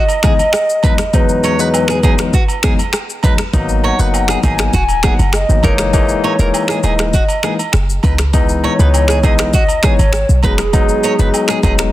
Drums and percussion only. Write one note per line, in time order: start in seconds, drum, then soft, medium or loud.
0.08 high agogo medium
0.08 shaker soft
0.23 finger snap medium
0.23 kick medium
0.23 cross-stick medium
0.23 shaker medium
0.39 high agogo medium
0.39 shaker medium
0.52 finger snap medium
0.52 cross-stick loud
0.52 low woodblock medium
0.52 shaker medium
0.70 shaker soft
0.83 kick loud
0.83 high agogo medium
0.83 shaker soft
0.98 finger snap medium
0.98 cross-stick medium
0.98 shaker medium
1.13 kick loud
1.13 high agogo medium
1.13 shaker medium
1.29 shaker soft
1.44 high agogo medium
1.44 shaker soft
1.59 shaker medium
1.74 high agogo medium
1.74 low woodblock medium
1.74 shaker medium
1.88 finger snap medium
1.88 cross-stick medium
1.88 shaker medium
2.03 kick medium
2.03 high agogo medium
2.03 shaker soft
2.19 finger snap medium
2.19 cross-stick medium
2.19 shaker medium
2.33 kick medium
2.33 shaker medium
2.48 high agogo medium
2.48 shaker soft
2.63 finger snap medium
2.63 kick loud
2.63 cross-stick medium
2.63 shaker medium
2.79 high agogo medium
2.79 shaker medium
2.92 finger snap medium
2.92 cross-stick medium
2.92 low woodblock medium
2.92 shaker medium
3.10 shaker soft
3.23 kick loud
3.23 high agogo medium
3.23 shaker soft
3.38 finger snap medium
3.38 cross-stick medium
3.38 shaker medium
3.53 kick loud
3.53 high agogo medium
3.53 shaker medium
3.69 shaker soft
3.84 high agogo medium
3.99 shaker soft
4.14 high agogo medium
4.14 low woodblock medium
4.14 shaker medium
4.28 finger snap medium
4.28 cross-stick medium
4.28 shaker medium
4.43 kick medium
4.43 high agogo medium
4.43 shaker soft
4.59 finger snap medium
4.59 cross-stick loud
4.59 shaker medium
4.73 kick medium
4.73 shaker medium
4.88 high agogo medium
4.88 shaker soft
5.03 finger snap medium
5.03 kick medium
5.03 cross-stick medium
5.03 shaker medium
5.19 high agogo medium
5.19 shaker medium
5.32 finger snap medium
5.32 cross-stick loud
5.32 low woodblock medium
5.32 shaker medium
5.49 shaker soft
5.63 kick loud
5.63 high agogo medium
5.63 shaker soft
5.78 finger snap medium
5.78 cross-stick medium
5.78 shaker medium
5.93 kick loud
5.93 high agogo medium
5.93 shaker medium
6.09 shaker medium
6.24 high agogo medium
6.39 shaker soft
6.54 high agogo medium
6.54 low woodblock medium
6.54 shaker medium
6.68 finger snap medium
6.68 cross-stick medium
6.68 shaker medium
6.83 high agogo medium
6.83 shaker soft
6.99 finger snap medium
6.99 cross-stick loud
6.99 shaker medium
7.13 kick medium
7.13 shaker medium
7.28 high agogo medium
7.28 shaker soft
7.43 finger snap medium
7.43 cross-stick medium
7.43 shaker medium
7.59 high agogo medium
7.59 shaker medium
7.72 finger snap medium
7.72 cross-stick medium
7.72 low woodblock medium
7.72 shaker medium
7.90 shaker soft
8.03 kick loud
8.03 high agogo medium
8.03 shaker soft
8.18 finger snap medium
8.18 cross-stick medium
8.18 shaker medium
8.33 kick loud
8.33 high agogo medium
8.33 shaker medium
8.49 shaker soft
8.64 high agogo medium
8.79 shaker medium
8.94 high agogo medium
8.94 low woodblock medium
8.94 shaker medium
9.08 finger snap medium
9.08 cross-stick medium
9.08 shaker medium
9.23 kick medium
9.23 high agogo medium
9.23 shaker soft
9.39 finger snap medium
9.39 cross-stick loud
9.39 shaker medium
9.53 kick medium
9.53 shaker medium
9.68 high agogo medium
9.68 shaker soft
9.83 finger snap medium
9.83 kick loud
9.83 cross-stick medium
9.83 shaker medium
9.99 high agogo medium
9.99 shaker medium
10.12 finger snap medium
10.12 cross-stick medium
10.12 low woodblock medium
10.12 shaker medium
10.29 shaker soft
10.43 kick loud
10.43 high agogo medium
10.43 shaker soft
10.58 finger snap medium
10.58 cross-stick medium
10.58 shaker medium
10.73 kick loud
10.73 high agogo medium
10.73 shaker medium
10.89 shaker soft
11.03 high agogo medium
11.03 shaker soft
11.19 shaker soft
11.34 high agogo medium
11.34 low woodblock medium
11.34 shaker medium
11.48 finger snap medium
11.48 cross-stick medium
11.48 shaker medium
11.63 kick medium
11.63 high agogo medium
11.63 shaker soft
11.79 finger snap medium
11.79 cross-stick medium
11.79 shaker medium